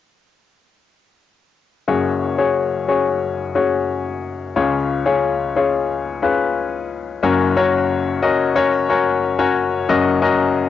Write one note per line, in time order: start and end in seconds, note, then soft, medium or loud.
1.88 4.52 F#1 medium
1.88 4.51 F#2 medium
1.88 2.35 C#4 medium
1.88 2.35 F#4 medium
1.88 2.35 G#4 medium
1.88 2.35 C#5 medium
2.38 2.85 C#4 medium
2.38 2.85 F#4 medium
2.38 2.85 G#4 medium
2.38 2.85 C#5 medium
2.88 3.51 C#4 medium
2.88 3.51 F#4 medium
2.88 3.51 G#4 medium
2.88 3.51 C#5 medium
3.55 4.48 C#4 medium
3.55 4.48 F#4 medium
3.55 4.48 G#4 medium
3.55 4.49 C#5 medium
4.56 7.18 C#2 medium
4.56 7.18 C#3 medium
4.56 5.02 C#4 medium
4.56 5.02 F4 medium
4.56 5.02 G#4 medium
4.56 5.02 C#5 medium
5.06 5.52 C#4 medium
5.06 5.52 F4 medium
5.06 5.52 G#4 medium
5.06 5.52 C#5 medium
5.56 6.18 C#4 medium
5.56 6.18 F4 medium
5.56 6.18 G#4 medium
5.56 6.18 C#5 medium
6.22 7.15 C#4 medium
6.22 7.15 F4 medium
6.22 7.15 G#4 medium
6.22 7.15 B4 medium
7.23 9.85 F#1 medium
7.23 9.85 F#2 medium
7.23 7.53 C#4 medium
7.23 7.54 F#4 medium
7.23 7.53 A#4 medium
7.23 7.54 C#5 medium
7.56 8.18 C#4 medium
7.56 8.18 F#4 medium
7.56 8.18 A#4 medium
7.56 8.18 C#5 medium
8.22 8.53 C#4 medium
8.22 8.53 F#4 medium
8.22 8.53 A#4 medium
8.22 8.53 D#5 medium
8.55 8.86 C#4 medium
8.55 8.86 F#4 medium
8.55 8.86 A#4 medium
8.55 8.86 C#5 medium
8.89 9.35 C#4 medium
8.89 9.35 F#4 medium
8.89 9.35 A#4 medium
8.89 9.35 C#5 medium
9.39 9.85 C#4 medium
9.39 9.85 F#4 medium
9.39 9.85 A#4 medium
9.39 9.85 C#5 medium
9.89 10.69 F#1 medium
9.89 10.69 F#2 medium
9.89 10.19 C#4 medium
9.89 10.19 F#4 medium
9.89 10.20 A#4 medium
9.89 10.20 D#5 medium
10.21 10.69 C#4 medium
10.21 10.69 F#4 medium
10.21 10.69 A#4 medium
10.21 10.69 D#5 medium